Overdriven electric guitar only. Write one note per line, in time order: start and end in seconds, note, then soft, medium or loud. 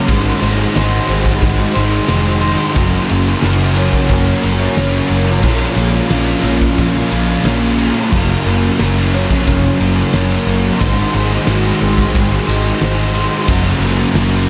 0.00 0.10 F#3 medium
0.07 0.72 G#3 loud
0.07 0.43 D#4 medium
0.07 0.42 F#4 loud
0.07 0.40 C5 loud
0.41 0.74 D#4 medium
0.41 0.76 F#4 medium
0.41 0.76 C5 medium
0.73 2.07 G#3 medium
0.73 1.76 D#4 medium
0.73 1.75 F#4 medium
0.73 1.73 C5 medium
1.74 2.08 D#4 medium
1.74 2.09 F#4 medium
1.74 2.10 C5 medium
2.08 2.74 G#3 medium
2.08 2.43 D#4 medium
2.08 2.42 F#4 medium
2.08 2.40 C5 medium
2.41 2.75 D#4 medium
2.41 2.75 F#4 medium
2.41 2.73 C5 medium
2.75 3.43 F#3 loud
2.75 3.43 A#3 medium
2.75 3.12 C#4 medium
2.75 3.10 F#4 loud
2.75 3.09 A#4 loud
3.09 3.44 C#4 medium
3.09 3.44 F#4 medium
3.09 3.46 A#4 medium
3.43 4.76 A#3 medium
3.43 4.46 C#4 medium
3.43 4.43 F#4 medium
3.43 4.43 A#4 medium
4.43 4.77 C#4 medium
4.43 4.77 F#4 medium
4.43 4.79 A#4 medium
4.76 5.44 A#3 medium
4.76 5.13 C#4 medium
4.76 5.11 F#4 medium
4.76 5.10 A#4 medium
5.10 5.44 C#4 medium
5.10 5.43 F#4 medium
5.10 5.45 A#4 medium
5.43 6.10 A#2 medium
5.43 8.11 F3 loud
5.43 5.79 A#3 loud
5.43 5.78 C#4 medium
5.43 5.77 F4 loud
5.43 5.75 A#4 loud
5.76 6.10 A#3 medium
5.76 6.11 C#4 medium
5.76 6.12 F4 medium
5.76 6.13 A#4 medium
6.10 7.13 A#3 medium
6.10 7.12 C#4 medium
6.10 7.11 F4 medium
6.10 7.09 A#4 medium
7.10 7.43 A#3 medium
7.10 7.45 C#4 medium
7.10 7.45 F4 medium
7.10 7.46 A#4 medium
7.44 7.80 A#3 medium
7.44 7.79 C#4 medium
7.44 7.78 F4 medium
7.44 7.77 A#4 medium
7.78 8.11 A#3 medium
7.78 8.11 C#4 medium
7.78 8.11 F4 medium
7.78 8.10 A#4 medium
8.11 10.84 F#3 medium
8.11 8.79 A#3 medium
8.11 8.47 C#4 loud
8.11 8.46 F#4 loud
8.11 8.44 A#4 loud
8.45 8.80 C#4 medium
8.45 8.82 F#4 medium
8.45 8.82 A#4 medium
8.80 10.12 A#3 medium
8.80 9.83 C#4 medium
8.80 9.82 F#4 medium
8.80 9.79 A#4 medium
9.80 10.13 C#4 medium
9.80 10.15 F#4 medium
9.80 10.14 A#4 medium
10.13 10.78 A#3 medium
10.13 10.49 C#4 medium
10.13 10.49 F#4 medium
10.13 10.46 A#4 medium
10.47 10.80 C#4 medium
10.47 10.82 F#4 medium
10.47 10.79 A#4 medium
10.81 11.46 G#3 medium
10.81 11.17 D#4 medium
10.81 11.16 F#4 loud
10.81 11.13 C5 loud
11.15 11.47 D#4 medium
11.15 11.49 F#4 medium
11.15 11.49 C5 medium
11.47 12.80 G#3 medium
11.47 12.49 D#4 medium
11.47 12.48 F#4 medium
11.47 12.46 C5 medium
12.47 12.81 D#4 medium
12.47 12.82 F#4 medium
12.47 12.83 C5 medium
12.81 13.47 G#3 medium
12.81 13.17 D#4 medium
12.81 13.15 F#4 medium
12.81 13.14 C5 medium
13.15 13.48 D#4 medium
13.15 13.48 F#4 medium
13.15 13.47 C5 medium
13.49 14.16 F#3 loud
13.49 14.14 A#3 loud
13.49 13.84 C#4 loud
13.49 13.83 F#4 loud
13.49 13.82 A#4 loud
13.82 14.15 C#4 medium
13.82 14.16 F#4 medium
13.82 14.18 A#4 medium
14.15 14.49 A#3 medium
14.15 14.49 C#4 medium
14.15 14.49 F#4 medium
14.15 14.49 A#4 medium